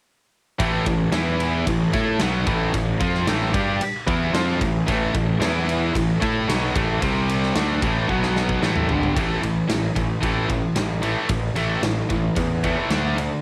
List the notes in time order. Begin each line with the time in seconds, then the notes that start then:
0.59 A1 A2 E3 A3, kick, ride
0.86 A1 A2 E3, kick, ride
1.12 E2 E3 B3 E4, snare, ride
1.40 ride
1.67 A1 A2 E3, kick, ride
1.92 A2 A3 E4 A4, kick, snare, ride
2.19 B1 B2 F#3 B3, snare, ride
2.46 A1 A2 E3 A3, kick, ride
2.73 A1 A2 E3, kick, ride
2.99 F2 F3 C4 F4, kick, ride
3.14 snare
3.27 A1 A2 E3 A3, snare, ride
3.53 G2 G3 D4 G4, kick, ride
3.81 muted picked electric bass stroke, muted distorted electric guitar stroke, ride
4.07 E2 E3 B3 E4, kick, ride
4.33 F2 F3 C4 F4, snare, ride
4.61 A1 A2 E3, kick, ride
4.86 A1 A2 E3 A3, kick, ride
5.13 A1 A2 E3, kick, ride
5.39 E2 E3 B3 E4, snare, ride
5.69 ride
5.94 A1 A2 E3, kick, ride
6.22 A2 A3 E4 A4, kick, ride
6.48 B1 B2 F#3 B3, snare, ride
6.75 A1 A2 E3 A3, kick, ride
7.02 C2 C3 G3 C4, kick, ride
7.29 ride
7.43 snare
7.55 D2 D3 A3 D4, snare, ride
7.82 A1 A2 E3 A3, kick, ride
8.09 B1 B2 F#3 B3, kick
8.23 snare
8.36 snare
8.49 kick
8.62 A1 A2 E3 A3, snare
8.76 mid tom
8.88 G1 G2 D3 G3, floor tom
9.03 floor tom
9.15 A1 A2 E3 A3, kick, ride
9.42 A1 A2 E3, ride
9.68 A1 A2 E3, snare, ride
9.96 A1 A2 E3, kick, ride
10.22 A1 A2 E3 A3, kick, ride
10.49 A2 E3, kick, ride
10.75 A1 A2 E3, snare, ride
11.02 A2 E3 A3, ride
11.29 A1 A2 E3, kick, ride
11.56 A1 A2 E3 A3, ride
11.82 A1 A2 E3, snare, ride
12.09 A1 A2 E3, kick, ride
12.36 E2 A2 E3, kick, ride
12.63 A2 E3 A3, kick, ride
12.90 D2 D3 A3 D4, snare, ride
13.18 D3 A3, ride